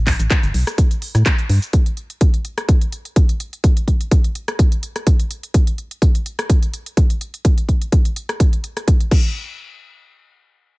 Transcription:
0.00 0.15 A1 medium
0.07 kick medium
0.07 clap medium
0.07 open hi-hat loud
0.20 0.28 A1 medium
0.20 closed hi-hat soft
0.20 cabasa medium
0.30 kick loud
0.30 clap loud
0.30 closed hi-hat medium
0.30 cabasa medium
0.43 0.52 G1 medium
0.43 closed hi-hat soft
0.43 cabasa soft
0.54 0.64 B1 medium
0.54 open hi-hat loud
0.67 cross-stick medium
0.67 closed hi-hat soft
0.67 cabasa medium
0.78 kick loud
0.78 closed hi-hat medium
0.78 cabasa medium
0.91 closed hi-hat soft
0.91 cabasa soft
1.02 open hi-hat loud
1.15 1.23 A2 medium
1.15 cross-stick medium
1.15 closed hi-hat soft
1.15 cabasa medium
1.26 kick loud
1.26 clap loud
1.26 closed hi-hat medium
1.26 cabasa soft
1.39 closed hi-hat soft
1.39 cabasa soft
1.49 1.59 G2 medium
1.49 open hi-hat loud
1.62 closed hi-hat soft
1.62 cabasa medium
1.73 kick loud
1.73 closed hi-hat medium
1.86 closed hi-hat soft
1.97 closed hi-hat soft
2.10 closed hi-hat soft
2.21 kick loud
2.21 closed hi-hat medium
2.34 closed hi-hat soft
2.45 closed hi-hat medium
2.58 cross-stick medium
2.58 closed hi-hat soft
2.69 kick loud
2.69 closed hi-hat medium
2.81 closed hi-hat soft
2.92 closed hi-hat medium
3.05 closed hi-hat soft
3.16 kick loud
3.16 closed hi-hat medium
3.29 closed hi-hat soft
3.40 closed hi-hat medium
3.53 closed hi-hat soft
3.64 kick loud
3.64 closed hi-hat medium
3.77 closed hi-hat soft
3.88 kick medium
3.88 closed hi-hat soft
4.01 closed hi-hat soft
4.11 kick loud
4.11 closed hi-hat medium
4.24 closed hi-hat soft
4.35 closed hi-hat medium
4.48 cross-stick medium
4.48 closed hi-hat soft
4.59 kick loud
4.59 closed hi-hat medium
4.72 closed hi-hat soft
4.83 closed hi-hat medium
4.96 cross-stick medium
4.96 closed hi-hat soft
5.07 kick loud
5.07 closed hi-hat medium
5.20 closed hi-hat soft
5.31 closed hi-hat medium
5.43 closed hi-hat soft
5.54 kick loud
5.54 closed hi-hat medium
5.67 closed hi-hat soft
5.78 closed hi-hat soft
5.91 closed hi-hat soft
6.02 kick loud
6.02 closed hi-hat medium
6.15 closed hi-hat soft
6.26 closed hi-hat medium
6.39 cross-stick medium
6.39 closed hi-hat soft
6.50 kick loud
6.50 closed hi-hat medium
6.63 closed hi-hat soft
6.74 closed hi-hat medium
6.86 closed hi-hat soft
6.97 kick loud
6.97 closed hi-hat medium
7.10 closed hi-hat soft
7.21 closed hi-hat medium
7.34 closed hi-hat soft
7.45 kick loud
7.45 closed hi-hat medium
7.58 closed hi-hat soft
7.69 kick medium
7.69 closed hi-hat soft
7.82 closed hi-hat soft
7.92 kick loud
7.92 closed hi-hat medium
8.05 closed hi-hat soft
8.16 closed hi-hat medium
8.29 cross-stick medium
8.29 closed hi-hat soft
8.40 kick loud
8.40 closed hi-hat medium
8.53 closed hi-hat soft
8.64 closed hi-hat medium
8.77 cross-stick medium
8.77 closed hi-hat soft
8.88 kick loud
8.88 closed hi-hat medium
9.01 closed hi-hat soft
9.11 kick loud
9.11 crash medium

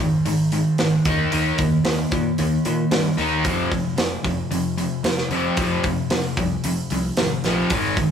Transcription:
0.00 0.17 G#1 medium
0.00 0.23 G#2 medium
0.00 0.23 D#3 medium
0.25 0.62 G#1 medium
0.25 0.49 G#2 medium
0.25 0.50 D#3 medium
0.25 open hi-hat medium
0.52 0.76 G#2 medium
0.52 0.76 D#3 medium
0.52 open hi-hat medium
0.78 0.97 G#1 medium
0.78 1.03 G#2 medium
0.78 1.03 D#3 medium
0.78 snare medium
0.78 open hi-hat medium
1.05 1.24 D#2 medium
1.05 1.30 D#3 medium
1.05 1.31 A#3 medium
1.05 1.31 D#4 loud
1.05 kick loud
1.05 open hi-hat soft
1.32 1.50 D#2 medium
1.32 1.57 D#3 medium
1.32 1.57 A#3 loud
1.32 1.58 D#4 loud
1.32 open hi-hat medium
1.58 1.77 D#2 medium
1.58 1.83 D#3 medium
1.58 1.83 A#3 medium
1.58 kick medium
1.58 open hi-hat medium
1.84 2.03 D#2 medium
1.84 2.09 D#3 medium
1.84 2.09 A#3 medium
1.84 snare loud
1.84 open hi-hat medium
2.11 2.30 A#2 medium
2.11 2.36 D#3 medium
2.11 2.36 A#3 medium
2.11 kick medium
2.11 open hi-hat soft
2.38 2.57 D#2 medium
2.38 2.63 D#3 medium
2.38 2.63 A#3 medium
2.38 open hi-hat medium
2.65 2.84 A#2 medium
2.65 2.89 D#3 medium
2.65 2.90 A#3 medium
2.65 open hi-hat soft
2.91 3.09 G2 medium
2.91 3.16 D#3 medium
2.91 3.16 A#3 medium
2.91 snare medium
2.91 open hi-hat medium
3.17 3.46 D#2 medium
3.17 3.43 D#3 medium
3.17 3.43 A#3 medium
3.17 3.43 D#4 loud
3.17 open hi-hat soft
3.44 3.81 F1 medium
3.44 3.70 F2 medium
3.44 3.70 C3 medium
3.44 3.70 F3 loud
3.44 kick loud
3.44 open hi-hat medium
3.71 3.95 F2 medium
3.71 3.96 C3 medium
3.71 kick medium
3.71 open hi-hat soft
3.97 4.16 F1 medium
3.97 4.22 F2 medium
3.97 4.22 C3 medium
3.97 snare loud
3.97 open hi-hat medium
4.24 4.43 F1 medium
4.24 4.49 F2 medium
4.24 4.49 C3 medium
4.24 kick medium
4.24 open hi-hat soft
4.50 4.87 F1 medium
4.50 4.75 F2 medium
4.50 4.75 C3 medium
4.50 open hi-hat medium
4.78 5.02 F2 medium
4.78 5.02 C3 medium
4.78 open hi-hat soft
5.03 5.22 F1 medium
5.03 5.28 F2 medium
5.03 5.29 C3 medium
5.03 snare medium
5.03 open hi-hat medium
5.18 snare soft
5.29 5.48 F1 medium
5.29 5.56 F2 loud
5.29 5.56 C3 loud
5.29 5.57 F3 loud
5.29 open hi-hat soft
5.57 5.76 F1 loud
5.57 5.83 F2 medium
5.57 5.83 C3 loud
5.57 5.83 F3 medium
5.57 kick loud
5.57 open hi-hat medium
5.84 6.03 F1 medium
5.84 6.09 F2 medium
5.84 6.09 C3 medium
5.84 kick medium
5.84 open hi-hat medium
6.10 6.29 F1 medium
6.10 6.35 F2 medium
6.10 6.35 C3 medium
6.10 snare loud
6.10 open hi-hat medium
6.37 6.56 C2 medium
6.37 6.62 F2 medium
6.37 6.62 C3 medium
6.37 kick medium
6.37 open hi-hat soft
6.64 6.82 F1 medium
6.64 6.89 F2 medium
6.64 6.88 C3 medium
6.64 open hi-hat medium
6.90 7.09 C2 medium
6.90 7.15 F2 medium
6.90 7.15 C3 medium
6.90 open hi-hat medium
7.17 7.35 G#1 medium
7.17 7.42 F2 medium
7.17 7.42 C3 medium
7.17 snare loud
7.17 open hi-hat medium
7.44 7.62 A#1 medium
7.44 7.70 F2 loud
7.44 7.70 C3 loud
7.44 7.70 F3 loud
7.44 snare soft
7.44 open hi-hat soft
7.70 8.07 G#1 medium
7.70 7.96 G#2 medium
7.70 7.96 D#3 loud
7.70 7.96 G#3 loud
7.70 kick loud
7.70 open hi-hat medium
7.97 8.11 G#2 medium
7.97 8.11 D#3 medium
7.97 kick medium
7.97 open hi-hat soft

